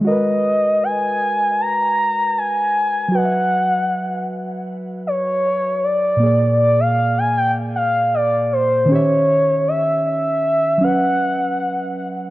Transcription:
<<
  \new Staff \with { instrumentName = "Soft synth lead" } { \time 4/4 \key gis \minor \tempo 4 = 78 dis''4 gis''4 ais''4 gis''4 | fis''2 r8 cis''4 d''8~ | d''8 d''16 eis''8 gis''16 g''8 eis''8 d''8 bis'8 cis''8~ | cis''8 e''8 e''4 fis''4. r8 | }
  \new Staff \with { instrumentName = "Synth keys" } { \time 4/4 \key gis \minor <gis fis' ais' b'>1 | <fis fis' b' dis'' e''>1 | <ais, ais gis' d''>2.~ <ais, ais gis' d''>8 <dis cis' g' e''>8~ | <dis cis' g' e''>2 <fis cis' b' e''>2 | }
>>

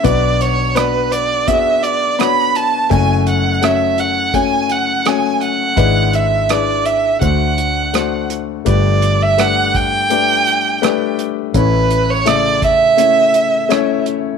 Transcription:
<<
  \new Staff \with { instrumentName = "Violin" } { \time 4/4 \key fis \minor \tempo 4 = 84 d''8 cis''8 b'8 d''8 e''8 d''8 b''8 a''8 | gis''8 fis''8 e''8 fis''8 gis''8 fis''8 gis''8 fis''8~ | fis''8 e''8 d''8 e''8 fis''4. r8 | \key g \lydian d''8. e''16 fis''8 g''2 r8 |
b'8. cis''16 d''8 e''2 r8 | }
  \new Staff \with { instrumentName = "Grand piano" } { \time 4/4 \key fis \minor <b d' fis' b'>4 <b d' fis' d''>4 <b d' fis' gis'>4 <b d' fis' cis''>4 | <a cis' fis' cis''>4 <a cis' fis' cis''>4 <a cis' fis' cis''>4 <a cis' fis' cis''>4 | <gis d' e' b'>4 <gis d' e' b'>4 <a d' fis' c''>4 <a d' fis' c''>4 | \key g \lydian <a d' g' b'>4 <a d' g' b'>4 <a d' g' b'>4 <a d' g' b'>4 |
<a cis' e' cis''>4 <cis a e' e''>4 <a cis' e' cis''>4 <a cis' e' cis''>4 | }
  \new Staff \with { instrumentName = "Grand piano" } { \clef bass \time 4/4 \key fis \minor <b,, b,>1 | <fis,, fis,>1 | <gis,, gis,>2 <d, d>2 | \key g \lydian <g,, g,>1 |
<a,, a,>1 | }
  \new Staff \with { instrumentName = "Fingered electric bass" } { \clef bass \time 4/4 \key fis \minor b,,1 | fis,,1 | gis,,2 d,2 | \key g \lydian g,,1 |
a,,1 | }
  \new DrumStaff \with { instrumentName = "Drums" } \drummode { \time 4/4 <hh bd>8 hh8 <hh ss>8 hh8 <hh bd>8 hh8 <hh ss>8 hh8 | <hh bd>8 hh8 <hh ss>8 hh8 <hh bd>8 hh8 <hh ss>8 hh8 | <hh bd>8 hh8 <hh ss>8 hh8 <hh bd>8 hh8 <hh ss>8 hh8 | <hh bd>8 hh8 <hh ss>8 <hh bd>8 hh8 hh8 <hh ss>8 hh8 |
<hh bd>8 hh8 <hh ss>8 <hh bd>8 hh8 hh8 <hh ss>8 hh8 | }
>>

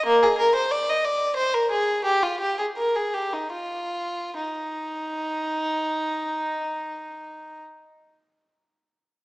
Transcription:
\new Staff \with { instrumentName = "Violin" } { \time 3/4 \key ees \major \tempo 4 = 73 bes16 aes'16 bes'16 c''16 d''16 ees''16 d''8 c''16 bes'16 aes'8 | g'16 f'16 g'16 aes'16 bes'16 aes'16 g'16 ees'16 f'4 | ees'2.~ | ees'2. | }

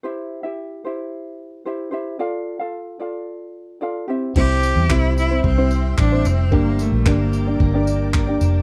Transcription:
<<
  \new Staff \with { instrumentName = "Ambient pad" } { \time 4/4 \key c \major \tempo 4 = 111 r1 | r1 | <c'' e'' g'' e'''>1 | <bes' d'' g'' d'''>1 | }
  \new Staff \with { instrumentName = "Ukulele" } { \time 4/4 \key c \major <e' g' c'' e''>8. <e' g' e''>8. <e' g' c'' e''>4. <e' g' c'' e''>8 <e' g' c'' e''>8 | <f' a' d'' f''>8. <f' a' f''>8. <f' a' d'' f''>4. <f' a' d'' f''>8 <c' e' g' e''>8 | <c' e' g' c''>4 <c' e' g' c''>8. <c' e' c''>8 <c' e' g' c''>4 <c' e' c''>8. | <d' g' bes' d''>4 <d' g' bes' d''>8. <d' g' d''>8 <d' g' bes' d''>4 <d' g' d''>8. | }
  \new Staff \with { instrumentName = "Cello" } { \time 4/4 \key c \major r1 | r1 | g'4 e'8 e'8 c'4 d'8 c'8 | bes8 a8 bes4 r2 | }
  \new Staff \with { instrumentName = "Clean electric guitar" } { \time 4/4 \key c \major r1 | r1 | <g e'>4 c'8 e'8 g8 c'8 g8 c'8 | <g g'>8 bes8 d'8 g'8 bes8 d'8 bes8 d'8 | }
  \new Staff \with { instrumentName = "Fingered electric bass" } { \clef bass \time 4/4 \key c \major r1 | r1 | c,8. e,16 c,4 c,4 a,,8 f,,8 | g,,8. bes,,16 g,,4 g,,4. f,,8 | }
  \new DrumStaff \with { instrumentName = "Drums" } \drummode { \time 4/4 r4 r4 r4 r4 | r4 r4 r4 r4 | <cymc bd>8 tamb8 <hc bd>8 tamb8 bd8 tamb8 <hc bd>8 tamb8 | bd8 tamb8 <hc bd>8 tamb8 bd8 tamb8 <hc bd>8 tamb8 | }
>>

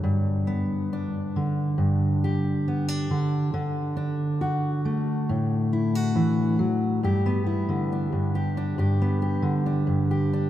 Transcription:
\new Staff \with { instrumentName = "Steel-string acoustic guitar" } { \time 4/4 \key g \major \tempo 4 = 68 << { r8 b8 d'4. g'8 b16 d'8. | r8 d'8 fis'4. e'16 fis'4~ fis'16 | g'16 b16 e'8 d'8 g'16 d'16 g'16 b16 g'8 d'8 g'16 d'16 | } \\ { <g, d>4. d8 g,4. d8 | d4. a8 a,4 e8 fis8 | g,8. d8 g,8. g,8. d8 g,8. | } >> }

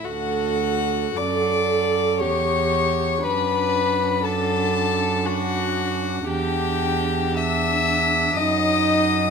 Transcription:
<<
  \new Staff \with { instrumentName = "Violin" } { \time 3/4 \key d \major \tempo 4 = 59 fis''4 d'''4 cis'''4 | b''4 a''4 fis''4 | g''4 e'''4 ees'''4 | }
  \new Staff \with { instrumentName = "Violin" } { \time 3/4 \key d \major fis'4 d''4 cis''4 | b'4 a'4 fis'4 | g'4 e''4 ees''4 | }
  \new Staff \with { instrumentName = "Viola" } { \time 3/4 \key d \major a'4 a'4 g'4 | d'4 d'4 d'4 | d'4 d'4 ees'4 | }
  \new Staff \with { instrumentName = "Cello" } { \clef bass \time 3/4 \key d \major d,4 fis,4 e,4 | fis,2. | e,2 ges,4 | }
>>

